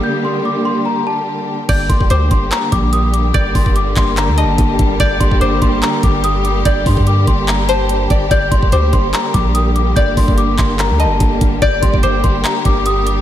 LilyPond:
<<
  \new Staff \with { instrumentName = "Celesta" } { \time 4/4 \key g \minor \tempo 4 = 145 g'''8 c'''8 d'''8 c'''8 bes''8 a''4. | g'''8 c'''8 d'''8 c'''8 bes''8 d'''8 ees'''8 d'''8 | g'''8 c'''8 d'''8 c'''8 bes''8 a''4. | g'''8 c'''8 d'''8 c'''8 bes''8 d'''8 ees'''8 d'''8 |
g'''8 c'''8 d'''8 c'''8 bes''8 a''4. | g'''8 c'''8 d'''8 c'''8 bes''8 d'''8 ees'''8 d'''8 | g'''8 c'''8 d'''8 c'''8 bes''8 a''4. | g'''8 c'''8 d'''8 c'''8 bes''8 d'''8 ees'''8 d'''8 | }
  \new Staff \with { instrumentName = "Synth pluck" } { \time 4/4 \key g \minor r1 | d''4 c''2 r4 | d''2~ d''8 ees''8 r4 | d''4 c''2 r4 |
d''2~ d''8 c''4 d''8 | d''4 c''2 r4 | d''2~ d''8 ees''8 r4 | d''4 c''2 r4 | }
  \new Staff \with { instrumentName = "String section" } { \clef bass \time 4/4 \key g \minor << { <g g'>1 | <g g'>1~ | <g g'>1~ | <g g'>1~ |
<g g'>1~ | <g g'>1~ | <g g'>1 | <g g'>1 | } \\ { <d bes>1 | <d bes>1~ | <d bes>1~ | <d bes>1~ |
<d bes>1 | <d bes>1~ | <d bes>1~ | <d bes>1 | } >> }
  \new Staff \with { instrumentName = "808-style bass" } { \clef bass \time 4/4 \key g \minor r1 | g,,8 g,,8 d,8 g,,8 r8 bes,,4. | g,,8 g,,4 g,,8. d,16. g,,16. g,,8 g,,8 | g,,8 g,,8 g,,8 g,,8 r8 g,,4. |
g,,8 g,4 g,,2 g,,8 | g,,8 g,,8 d,8 g,,8 r8 bes,,4. | g,,8 g,,4 g,,8. d,16. g,,16. g,,8 g,,8 | g,,8 g,,8 g,,8 g,,8 r8 g,,4. | }
  \new DrumStaff \with { instrumentName = "Drums" } \drummode { \time 4/4 r4 r4 r4 r4 | <cymc hh bd>8 <hh bd>16 bd16 hh8 <hh bd>8 <hc hh>8 <hh bd>8 hh8 hh8 | <hh bd>8 <hho bd>16 bd16 hh8 <hc hh bd>8 <hc hh>8 hh8 <hh bd>8 <hh bd>8 | <hh bd>8 <hh bd>16 bd16 hh8 <hh bd>8 <hc hh>8 <hh bd>8 hh8 hh8 |
<hh bd>8 <hho bd>16 bd16 hh8 <hh bd>8 <hc hh>8 hh8 hh8 <hh bd>8 | <hh bd>8 <hh bd>16 bd16 hh8 <hh bd>8 <hc hh>8 <hh bd>8 hh8 hh8 | <hh bd>8 <hho bd>16 bd16 hh8 <hc hh bd>8 <hc hh>8 hh8 <hh bd>8 <hh bd>8 | <hh bd>8 <hh bd>16 bd16 hh8 <hh bd>8 <hc hh>8 <hh bd>8 hh8 hh8 | }
>>